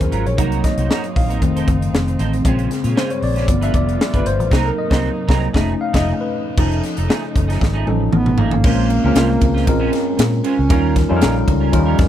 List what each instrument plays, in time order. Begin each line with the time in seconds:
Already playing: string section D#3 F#3 C#4 F4, tine electric piano F#3 C#4 F4 G#4 A#4 C5
0.01 fingered electric bass D#2, muted clean electric guitar stroke, kick, closed hi-hat
0.11 fingered electric bass G#1, clean electric guitar F#3 C#4 F4 A#4, closed hi-hat
0.26 fingered electric bass A#1, tine electric piano C#5, muted clean electric guitar stroke, closed hi-hat
0.37 fingered electric bass C2, string section F#3 A#3 C4 D#4, tine electric piano F#3 A#3 D#4, clean electric guitar A#3 D#4 F#4 A#4, kick, closed hi-hat
0.52 closed hi-hat
0.63 tine electric piano D#5, muted clean electric guitar stroke, kick, snare, closed hi-hat
0.77 fingered electric bass C2, clean electric guitar A#3 D#4 F#4 C5, closed hi-hat
0.90 clean electric guitar A#3 D#4 F#4 A#4, snare
1.04 muted clean electric guitar stroke, closed hi-hat
1.15 fingered electric bass A#1, tine electric piano F5, muted clean electric guitar stroke, kick, open hi-hat
1.29 clean electric guitar A#3 D#4 F#4 A#4, closed hi-hat
1.41 fingered electric bass F1, tine electric piano D#3 A3 C4, string section F3 A3, muted clean electric guitar stroke, kick, closed hi-hat
1.56 clean electric guitar C4 D#4 A4 C5, closed hi-hat
1.68 fingered electric bass F#1, muted clean electric guitar stroke, kick, closed hi-hat
1.81 muted clean electric guitar stroke, closed hi-hat
1.93 fingered electric bass F1, muted clean electric guitar stroke, snare
2.08 muted clean electric guitar stroke, closed hi-hat
2.19 fingered electric bass A1, clean electric guitar C4 D#4 A4 C5, closed hi-hat
2.33 muted clean electric guitar stroke, closed hi-hat
2.43 fingered electric bass A#1, string section C#3 G#3 A#3, tine electric piano C#3 G#3 C4, clean electric guitar G#3 C#4 F4 C5, kick, closed hi-hat
2.59 closed hi-hat
2.70 muted clean electric guitar stroke, snare, closed hi-hat
2.84 fingered electric bass A#2, clean electric guitar G#3 C#4 F4 C#5, closed hi-hat
2.96 clean electric guitar G#3 C#4 F4 C5, tine electric piano C5, snare
3.10 tine electric piano C#5, muted clean electric guitar stroke, closed hi-hat
3.21 fingered electric bass A#1, tine electric piano D5, muted clean electric guitar stroke, open hi-hat
3.35 clean electric guitar G#3 C#4 F4 C5, snare, closed hi-hat
3.46 fingered electric bass G1, string section D3 G3 B3 F4, tine electric piano F3 A3 B3, muted clean electric guitar stroke, kick, closed hi-hat
3.61 clean electric guitar G3 D4 F4 B4, tine electric piano E5, closed hi-hat
3.73 fingered electric bass F1, tine electric piano D5, muted clean electric guitar stroke, kick, closed hi-hat
3.87 muted clean electric guitar stroke, closed hi-hat
3.99 muted clean electric guitar stroke, snare
4.13 fingered electric bass G1, clean electric guitar G3 D4 F4 B4, tine electric piano B4, kick, closed hi-hat
4.25 fingered electric bass G1, tine electric piano C5, muted clean electric guitar stroke, closed hi-hat
4.39 fingered electric bass A1, muted clean electric guitar stroke, closed hi-hat
4.49 fingered electric bass C2, string section C3 F#3 A#3 D#4, clean electric guitar F#3 C4 D#4 A#4, tine electric piano F#3 A#3, kick, snare, crash
4.53 tine electric piano D#4
4.63 tine electric piano A4 A#4
4.78 tine electric piano D#5
4.90 fingered electric bass C2, clean electric guitar F#3 C4 D#4 C5, kick, snare
5.28 fingered electric bass C2, clean electric guitar F#3 C4 D#4 A#4, kick, snare
5.53 fingered electric bass F1, string section C#3 F3 A3 D#4, clean electric guitar F3 A3 D#4 G#4, tine electric piano A3 C#4 D#4, kick, snare
5.81 tine electric piano F5
5.93 fingered electric bass F1, clean electric guitar F3 A3 D#4 G#4, tine electric piano D#5, kick, snare, crash
6.21 tine electric piano B4
6.57 fingered electric bass F1, string section C#3 F3 A3 D#4, clean electric guitar F3 A3 D#4 G#4, tine electric piano F3 C#4 D#4 A4, kick, crash
6.72 closed hi-hat
6.83 muted clean electric guitar stroke, snare, closed hi-hat
6.97 fingered electric bass F1, clean electric guitar F3 A3 D#4 A4, closed hi-hat
7.08 clean electric guitar F3 A3 D#4 G#4, snare
7.23 muted clean electric guitar stroke
7.35 fingered electric bass F#1, muted clean electric guitar stroke, kick, closed hi-hat
7.48 clean electric guitar F3 A3 D#4 G#4, snare, closed hi-hat
7.60 fingered electric bass G#1, muted clean electric guitar stroke, kick, snare
7.74 clean electric guitar F3 A3 D#4 G#4
7.86 fingered electric bass A1, tine electric piano F3 C#4 D#4 A4, muted clean electric guitar stroke, high tom
8.00 muted clean electric guitar stroke
8.12 fingered electric bass A1, bass clarinet B3, muted clean electric guitar stroke, mid tom
8.26 muted clean electric guitar stroke, mid tom
8.38 fingered electric bass G#1, clean electric guitar F3 A3 D#4 G#4, bass clarinet A#3, floor tom
8.51 muted clean electric guitar stroke, floor tom
8.64 fingered electric bass A#1, clean electric guitar G#3 C#4 F4 C5, tine electric piano G#3 C4 C#4 F4 A#4, kick, crash
8.90 muted clean electric guitar stroke, ride
9.03 fingered electric bass C#2, clean electric guitar G#3 C#4 F4 C#5, tine electric piano G#3 C4 C#4 F4 A#4
9.15 fingered electric bass C2, clean electric guitar G#3 C#4 F4 C5, snare, ride
9.28 muted clean electric guitar stroke
9.41 fingered electric bass C#2, muted clean electric guitar stroke, kick, ride
9.54 clean electric guitar G#3 C#4 F4 C5, snare
9.66 fingered electric bass A#1, bass clarinet G#3, tine electric piano G#3 C4 C#4 F4 A#4, muted clean electric guitar stroke, kick, ride
9.80 clean electric guitar G#3 C#4 F4 C5
9.91 muted clean electric guitar stroke, snare, ride
10.06 muted clean electric guitar stroke
10.17 fingered electric bass A#2, muted clean electric guitar stroke, snare, ride
10.31 muted clean electric guitar stroke
10.44 clean electric guitar G#3 C#4 F4 C5, bass clarinet C#4, ride
10.58 fingered electric bass C#2, muted clean electric guitar stroke
10.69 fingered electric bass D#2, clean electric guitar G3 C#4 F4 A#4, tine electric piano G3 C#4 D#4 F4 A#4, kick, ride
10.95 muted clean electric guitar stroke, kick, snare, ride
11.09 fingered electric bass F2, tine electric piano G3 C#4 D#4 F4 A4, clean electric guitar G3 C#4 F4 C5
11.17 tine electric piano A#4
11.21 fingered electric bass A#1, clean electric guitar G3 C#4 F4 A#4, snare, ride
11.36 muted clean electric guitar stroke
11.47 fingered electric bass C#2, muted clean electric guitar stroke, kick, ride
11.60 clean electric guitar G3 C#4 F4 A#4
11.72 fingered electric bass D#2, tine electric piano F3 C#4 D#4 F4 A#4, muted clean electric guitar stroke, kick, ride
11.78 tine electric piano G3
11.86 clean electric guitar G3 C#4 F4 A#4
11.98 fingered electric bass F2, muted clean electric guitar stroke, kick, snare, ride